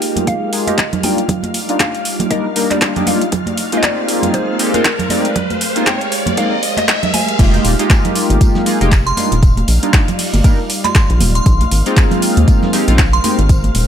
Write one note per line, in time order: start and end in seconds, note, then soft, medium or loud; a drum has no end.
0.00 0.50 G#3 medium
0.00 1.02 G#3 medium
0.00 0.50 A#3 medium
0.00 0.50 D#4 medium
0.00 0.50 F4 medium
0.00 3.28 F4 medium
0.00 0.50 G4 loud
0.00 1.02 G4 medium
0.00 1.02 A#4 medium
0.00 1.02 D#5 medium
0.00 7.38 F5 medium
0.00 0.29 G5 loud
0.00 7.38 F6 medium
0.00 open hi-hat loud
0.00 riser medium
0.16 closed hi-hat medium
0.16 high conga medium
0.16 low conga medium
0.27 0.69 F5 loud
0.27 kick loud
0.27 closed hi-hat medium
0.53 0.65 G#3 medium
0.53 0.65 A#3 medium
0.53 0.65 D#4 medium
0.53 0.65 F4 medium
0.53 0.65 G#4 medium
0.53 open hi-hat loud
0.67 0.78 G#3 loud
0.67 0.78 A#3 medium
0.67 0.79 D#4 medium
0.67 0.78 F4 medium
0.67 0.79 G4 loud
0.67 1.05 D#5 medium
0.67 closed hi-hat medium
0.67 high conga medium
0.78 kick loud
0.78 clap loud
0.78 closed hi-hat medium
0.93 closed hi-hat soft
0.93 low conga medium
1.03 1.19 G3 medium
1.03 3.30 G3 medium
1.03 1.19 A#3 medium
1.03 1.19 D4 medium
1.03 5.06 D#4 medium
1.03 1.19 D#4 medium
1.03 1.19 F4 medium
1.03 1.15 G5 medium
1.03 3.30 D6 medium
1.03 open hi-hat loud
1.03 high conga medium
1.18 closed hi-hat medium
1.28 kick loud
1.28 closed hi-hat medium
1.28 low conga medium
1.43 closed hi-hat soft
1.43 high conga medium
1.54 open hi-hat loud
1.69 1.89 G3 medium
1.69 1.89 A#3 medium
1.69 1.89 D4 medium
1.69 1.89 D#4 medium
1.69 1.89 F4 medium
1.69 closed hi-hat soft
1.80 2.32 F5 loud
1.80 kick loud
1.80 clap loud
1.80 closed hi-hat medium
1.80 high conga medium
1.95 closed hi-hat soft
2.05 open hi-hat loud
2.20 closed hi-hat medium
2.20 high conga medium
2.20 low conga medium
2.30 2.46 G3 loud
2.30 2.46 A#3 medium
2.30 2.46 D4 medium
2.30 2.46 D#4 medium
2.30 2.46 A#4 loud
2.30 2.72 D#5 loud
2.30 kick loud
2.30 closed hi-hat medium
2.56 2.67 G3 medium
2.56 2.67 A#3 medium
2.56 2.67 D4 medium
2.56 2.67 D#4 medium
2.56 2.67 A#4 loud
2.56 open hi-hat loud
2.71 2.93 G3 medium
2.71 2.93 A#3 medium
2.71 2.93 D4 medium
2.71 2.93 D#4 medium
2.71 2.93 F4 medium
2.71 3.04 D5 medium
2.71 clap soft
2.71 closed hi-hat medium
2.71 high conga medium
2.81 kick loud
2.81 clap loud
2.81 closed hi-hat medium
2.96 3.05 G3 medium
2.96 3.05 A#3 medium
2.96 3.05 D4 medium
2.96 3.05 D#4 medium
2.96 3.05 G4 loud
2.96 closed hi-hat soft
2.96 low conga loud
3.06 3.22 G3 medium
3.06 3.22 A#3 medium
3.06 3.22 D4 medium
3.06 3.22 D#4 medium
3.06 3.22 F4 medium
3.06 3.31 F5 medium
3.06 open hi-hat loud
3.06 high conga medium
3.21 closed hi-hat medium
3.32 7.35 G#3 medium
3.32 7.35 A#4 medium
3.32 7.35 C5 medium
3.32 kick loud
3.32 closed hi-hat medium
3.32 low conga loud
3.46 closed hi-hat soft
3.46 high conga medium
3.58 open hi-hat loud
3.72 4.57 G#3 medium
3.72 4.57 A#3 medium
3.72 4.57 C4 medium
3.72 4.57 D#4 medium
3.72 4.57 F4 loud
3.72 closed hi-hat medium
3.77 3.83 D#5 medium
3.83 4.36 D5 loud
3.83 kick loud
3.83 clap loud
3.83 closed hi-hat medium
3.83 high conga medium
4.08 open hi-hat loud
4.23 closed hi-hat medium
4.23 high conga medium
4.23 low conga medium
4.34 4.75 C5 loud
4.34 kick loud
4.34 closed hi-hat medium
4.59 4.72 G#3 medium
4.59 4.72 A#3 medium
4.59 4.72 C4 medium
4.59 4.72 D#4 medium
4.59 4.72 G4 loud
4.59 open hi-hat loud
4.74 4.85 G#3 loud
4.74 4.85 A#3 medium
4.74 4.85 C4 medium
4.74 4.85 D#4 medium
4.74 4.85 F4 loud
4.74 5.11 A#4 medium
4.74 closed hi-hat medium
4.74 high conga medium
4.85 kick loud
4.85 clap loud
4.85 closed hi-hat medium
4.99 closed hi-hat soft
4.99 low conga medium
5.09 5.25 G#3 medium
5.09 5.25 A#3 medium
5.09 5.25 C4 medium
5.09 5.25 D#4 medium
5.09 7.37 G4 medium
5.09 5.25 G4 medium
5.09 5.34 D5 medium
5.09 open hi-hat loud
5.09 high conga medium
5.25 closed hi-hat medium
5.36 kick loud
5.36 closed hi-hat medium
5.36 low conga loud
5.50 closed hi-hat soft
5.50 high conga medium
5.61 open hi-hat loud
5.76 5.96 G#3 medium
5.76 5.96 A#3 medium
5.76 5.96 C4 medium
5.76 5.96 D#4 medium
5.76 5.96 F4 medium
5.76 closed hi-hat medium
5.87 6.39 G5 medium
5.87 kick loud
5.87 clap loud
5.87 closed hi-hat medium
5.87 high conga medium
6.01 closed hi-hat soft
6.12 open hi-hat loud
6.26 closed hi-hat medium
6.26 high conga loud
6.26 low conga medium
6.37 6.52 G#3 loud
6.37 6.53 A#3 medium
6.37 6.53 C4 medium
6.37 6.53 D#4 medium
6.37 6.53 A#4 loud
6.37 6.79 F5 loud
6.37 kick loud
6.37 closed hi-hat medium
6.63 open hi-hat loud
6.77 7.15 D#5 loud
6.77 clap soft
6.77 closed hi-hat medium
6.77 high conga medium
6.88 kick loud
6.88 clap loud
6.88 closed hi-hat medium
7.03 closed hi-hat soft
7.03 low conga medium
7.14 7.37 G#5 loud
7.14 open hi-hat loud
7.14 high conga medium
7.28 closed hi-hat medium
7.39 7.59 F1 loud
7.39 7.73 G#3 loud
7.39 9.15 G#3 medium
7.39 7.73 A#3 medium
7.39 7.73 D#4 medium
7.39 7.73 F4 medium
7.39 7.73 G4 loud
7.39 9.15 G4 medium
7.39 9.15 A#4 medium
7.39 9.15 D#5 loud
7.39 13.87 F5 medium
7.39 13.87 F6 medium
7.39 kick loud
7.39 closed hi-hat medium
7.39 crash loud
7.39 tambourine medium
7.54 closed hi-hat soft
7.54 high conga medium
7.64 7.75 D#1 medium
7.64 open hi-hat loud
7.64 tambourine medium
7.79 8.64 G#3 medium
7.79 8.64 A#3 medium
7.79 8.64 D#4 medium
7.79 8.64 F4 medium
7.79 8.64 G4 loud
7.79 closed hi-hat soft
7.79 closed hi-hat medium
7.90 kick loud
7.90 snare loud
7.90 clap loud
7.90 closed hi-hat medium
7.90 tambourine medium
7.90 high conga medium
8.05 closed hi-hat soft
8.05 low conga medium
8.15 snare medium
8.15 open hi-hat loud
8.15 tambourine medium
8.30 8.38 G#1 loud
8.30 closed hi-hat medium
8.30 high conga medium
8.41 kick loud
8.41 closed hi-hat medium
8.41 tambourine medium
8.55 snare medium
8.55 low conga medium
8.66 8.79 G#3 medium
8.66 8.79 A#3 medium
8.66 8.79 D#4 medium
8.66 8.79 F4 medium
8.66 8.79 G#4 loud
8.66 open hi-hat loud
8.66 tambourine medium
8.81 9.13 F1 medium
8.81 8.92 G#3 loud
8.81 8.92 A#3 medium
8.81 8.92 D#4 medium
8.81 8.92 F4 medium
8.81 8.92 G4 loud
8.81 closed hi-hat medium
8.81 high conga medium
8.92 kick loud
8.92 snare loud
8.92 clap loud
8.92 closed hi-hat medium
8.92 tambourine medium
9.07 9.13 C6 medium
9.07 closed hi-hat soft
9.17 9.32 G3 medium
9.17 11.44 G3 medium
9.17 9.32 A#3 medium
9.17 9.32 D4 medium
9.17 13.20 D#4 medium
9.17 9.32 D#4 medium
9.17 9.32 F4 medium
9.17 11.44 F4 medium
9.17 11.44 D5 medium
9.17 9.27 C6 medium
9.17 open hi-hat loud
9.17 tambourine medium
9.17 high conga medium
9.32 9.63 D#1 loud
9.32 closed hi-hat medium
9.43 kick loud
9.43 closed hi-hat medium
9.43 tambourine medium
9.57 closed hi-hat soft
9.57 high conga loud
9.68 9.79 A#1 medium
9.68 open hi-hat loud
9.68 tambourine medium
9.83 10.03 G3 medium
9.83 10.03 A#3 medium
9.83 10.03 D4 medium
9.83 10.03 D#4 medium
9.83 10.03 F4 medium
9.83 closed hi-hat medium
9.93 kick loud
9.93 snare loud
9.93 clap loud
9.93 closed hi-hat medium
9.93 tambourine medium
9.93 high conga medium
10.08 closed hi-hat soft
10.08 low conga medium
10.19 open hi-hat medium
10.19 open hi-hat loud
10.33 10.41 G1 medium
10.33 snare soft
10.33 closed hi-hat medium
10.33 high conga loud
10.44 10.59 G3 loud
10.44 10.59 A#3 medium
10.44 10.59 D4 medium
10.44 10.59 D#4 medium
10.44 10.59 A#4 loud
10.44 kick loud
10.44 closed hi-hat medium
10.44 tambourine medium
10.70 open hi-hat loud
10.70 tambourine medium
10.84 11.04 C6 medium
10.84 clap soft
10.84 closed hi-hat medium
10.84 high conga medium
10.95 kick loud
10.95 snare loud
10.95 clap loud
10.95 closed hi-hat medium
10.95 tambourine medium
11.10 11.22 A#1 medium
11.10 closed hi-hat soft
11.20 11.40 D#1 loud
11.20 open hi-hat loud
11.20 tambourine medium
11.20 high conga loud
11.20 low conga medium
11.35 11.52 C6 medium
11.35 closed hi-hat medium
11.46 11.66 A#1 loud
11.46 13.87 G#3 medium
11.46 13.87 A#4 medium
11.46 13.87 C5 loud
11.46 kick loud
11.46 closed hi-hat medium
11.46 tambourine medium
11.61 closed hi-hat soft
11.61 high conga medium
11.71 11.82 G#1 medium
11.71 open hi-hat loud
11.71 tambourine medium
11.86 12.70 G#3 medium
11.86 12.71 A#3 medium
11.86 12.71 C4 medium
11.86 12.71 D#4 medium
11.86 12.71 F4 loud
11.86 closed hi-hat soft
11.86 closed hi-hat medium
11.97 kick loud
11.97 snare loud
11.97 clap loud
11.97 closed hi-hat medium
11.97 tambourine medium
11.97 high conga medium
12.11 closed hi-hat soft
12.11 low conga medium
12.22 open hi-hat loud
12.22 tambourine medium
12.37 12.45 D#2 loud
12.37 closed hi-hat medium
12.37 high conga medium
12.48 kick loud
12.48 closed hi-hat medium
12.48 tambourine medium
12.62 snare soft
12.62 low conga loud
12.73 12.86 G#3 medium
12.73 12.86 A#3 medium
12.73 12.86 C4 medium
12.73 12.86 D#4 medium
12.73 12.86 G4 loud
12.73 snare loud
12.73 open hi-hat loud
12.73 tambourine medium
12.88 13.19 A#1 medium
12.88 12.99 G#3 loud
12.88 12.99 A#3 medium
12.88 12.99 C4 medium
12.88 12.99 D#4 medium
12.88 12.99 F4 loud
12.88 closed hi-hat medium
12.88 high conga medium
12.98 kick loud
12.98 snare medium
12.98 clap loud
12.98 closed hi-hat medium
12.98 tambourine medium
13.13 13.20 C6 medium
13.13 closed hi-hat soft
13.24 13.39 G#3 medium
13.24 13.39 A#3 medium
13.24 13.39 C4 medium
13.24 13.39 D#4 medium
13.24 13.39 G4 medium
13.24 13.87 G4 medium
13.24 13.33 C6 medium
13.24 open hi-hat loud
13.24 tambourine medium
13.24 high conga medium
13.39 13.70 G#1 loud
13.39 closed hi-hat medium
13.49 kick loud
13.49 closed hi-hat medium
13.49 tambourine medium
13.64 closed hi-hat soft
13.64 high conga medium
13.75 13.86 D#1 medium
13.75 open hi-hat loud
13.75 tambourine medium